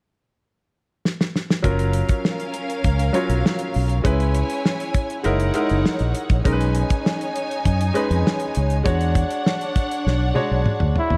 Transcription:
1.05 snare
1.21 snare
1.36 snare
1.50 snare
1.62 F#1 F#3 C#4 F4 A#4 F5, kick, closed hi-hat
1.79 closed hi-hat
1.93 closed hi-hat
2.09 kick, closed hi-hat
2.25 snare
2.40 closed hi-hat
2.54 closed hi-hat
2.70 closed hi-hat
2.84 C#2, kick, closed hi-hat
2.99 closed hi-hat
3.13 F#3 C#4 F4 C#5, closed hi-hat
3.29 B1, closed hi-hat
3.46 snare
3.59 closed hi-hat
3.74 B1, open hi-hat
3.89 closed hi-hat
4.04 C#2 G#3 C#4 E4 B4 C#5 G#5, kick, closed hi-hat
4.20 closed hi-hat
4.34 closed hi-hat
4.50 closed hi-hat
4.66 snare
4.80 closed hi-hat
4.94 kick, closed hi-hat
5.10 closed hi-hat
5.23 F#1 G#3 D#4 E4 A#4 C#5 F#5, closed hi-hat
5.40 closed hi-hat
5.54 G#3 D#4 E4 A#4, closed hi-hat
5.69 F#1, closed hi-hat
5.86 snare
5.99 A#1, closed hi-hat
6.15 closed hi-hat
6.30 A#1, kick, closed hi-hat
6.43 B1 G#3 C#4 D#4 A#4 C#5 G#5, kick, closed hi-hat
6.53 B4
6.61 closed hi-hat
6.75 closed hi-hat
6.90 kick, closed hi-hat
7.06 snare
7.21 closed hi-hat
7.36 closed hi-hat
7.51 closed hi-hat
7.65 F#2, kick, closed hi-hat
7.81 closed hi-hat
7.94 G#3 C#4 D#4 B4, closed hi-hat
8.11 F2, closed hi-hat
8.27 snare
8.40 closed hi-hat
8.55 C#2, closed hi-hat
8.70 closed hi-hat
8.84 E2 G#3 D4 F#4 C#5 F#5, kick, closed hi-hat
9.01 closed hi-hat
9.15 kick, closed hi-hat
9.31 closed hi-hat
9.46 snare
9.61 closed hi-hat
9.76 kick, closed hi-hat
9.91 closed hi-hat
10.06 B1, snare
10.34 G#3 D4 F#4 C#5, high tom
10.51 B1
10.66 muted fingered electric bass stroke, mid tom
10.80 D2, mid tom
10.96 E4, floor tom
11.10 E2, floor tom

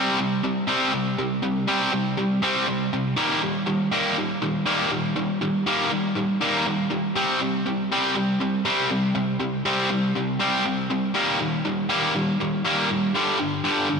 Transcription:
Already playing: C3 G3 C4
0.19 C3 G3
0.44 C3 G3
0.67 C3 G3 C4
0.93 C3 G3
1.18 C3 G3
1.42 C3 G3
1.67 C3 G3 C4
1.92 C3 G3
2.17 C3 G3
2.42 C3 G3 C4
2.67 C3 G3
2.93 C3 G3
3.16 D#3 G3 A#3
3.42 D#3 G3
3.67 D#3 G3
3.92 D#3 G3 A#3
4.18 D#3 G3
4.42 D#3 G3
4.66 D#3 G3 A#3
4.91 D#3 G3
5.16 D#3 G3
5.41 D#3 G3
5.66 D#3 G3 A#3
5.90 D#3 G3
6.15 D#3 G3
6.41 D#3 G3 A#3
6.66 D#3 G3
6.90 D#3 G3
7.16 C3 G3 C4
7.41 C3 G3
7.66 C3 G3
7.92 C3 G3 C4
8.16 C3 G3
8.40 C3 G3
8.65 C3 G3 C4
8.91 C3 G3
9.15 C3 G3
9.40 C3 G3
9.65 C3 G3 C4
9.90 C3 G3
10.15 C3 G3
10.39 C3 G3 C4
10.65 C3 G3
10.90 C3 G3
11.14 D#3 G3 A#3
11.40 D#3 G3
11.65 D#3 G3
11.89 D#3 G3 A#3
12.15 D#3 G3
12.40 D#3 G3
12.65 D#3 G3 A#3
12.90 D#3 G3
13.14 G2 D3 G3
13.40 G2 D3
13.64 G2 D3 G3
13.90 G2 D3

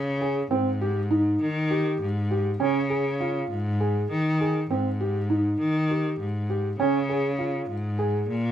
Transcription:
Already playing: C#3
0.21 G#4
0.51 G#2 C4
0.81 G4
1.10 D#4
1.41 D#3
1.71 G4
2.01 G#2
2.31 G4
2.60 C#3 C#4
2.90 G#4
3.20 F4
3.51 G#2
3.80 G#4
4.10 D#3
4.41 G#4
4.70 G#2 C4
5.00 G4
5.30 D#4
5.59 D#3
5.90 G4
6.20 G#2
6.50 G4
6.79 C#3 C#4
7.09 G#4
7.39 F4
7.69 G#2
7.99 G#4
8.28 A#2

